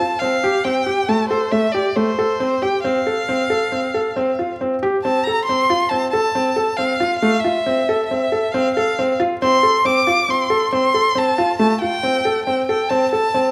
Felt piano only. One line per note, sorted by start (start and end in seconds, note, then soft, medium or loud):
0.00 0.12 F4 medium
0.22 0.34 C4 medium
0.44 0.56 G4 medium
0.65 0.78 C4 medium
0.86 0.99 G4 medium
1.09 1.21 A3 medium
1.31 1.43 A4 medium
1.52 1.65 A3 medium
1.74 1.87 G4 medium
1.96 2.09 A3 medium
2.19 2.31 A4 medium
2.40 2.53 C4 medium
2.62 2.75 G4 medium
2.84 2.97 C4 medium
3.07 3.19 A4 medium
3.29 3.41 C4 medium
3.50 3.63 A4 medium
3.72 3.85 C4 medium
3.94 4.07 A4 medium
4.16 4.29 C4 medium
4.39 4.51 F4 medium
4.61 4.73 C4 medium
4.83 4.95 G4 medium
5.05 5.17 C4 medium
5.27 5.39 A4 medium
5.49 5.61 C4 medium
5.70 5.82 F4 medium
5.91 6.04 C4 medium
6.13 6.26 A4 medium
6.35 6.48 C4 medium
6.56 6.69 A4 medium
6.78 6.91 C4 medium
7.00 7.13 F4 medium
7.22 7.35 A3 medium
7.44 7.57 F4 medium
7.66 7.79 C4 medium
7.89 8.01 A4 medium
8.11 8.23 C4 medium
8.32 8.45 A4 medium
8.54 8.67 C4 medium
8.77 8.89 A4 medium
8.99 9.11 C4 medium
9.20 9.32 F4 medium
9.42 9.54 C4 medium
9.63 9.76 A4 medium
9.85 9.97 C4 medium
10.07 10.19 F4 medium
10.29 10.41 C4 medium
10.50 10.63 A4 medium
10.73 10.85 C4 medium
10.94 11.07 A4 medium
11.15 11.28 C4 medium
11.38 11.51 F4 medium
11.59 11.72 A3 medium
11.82 11.94 F4 medium
12.03 12.16 C4 medium
12.25 12.38 A4 medium
12.47 12.59 C4 medium
12.69 12.81 A4 medium
12.90 13.03 C4 medium
13.13 13.25 A4 medium
13.34 13.47 C4 medium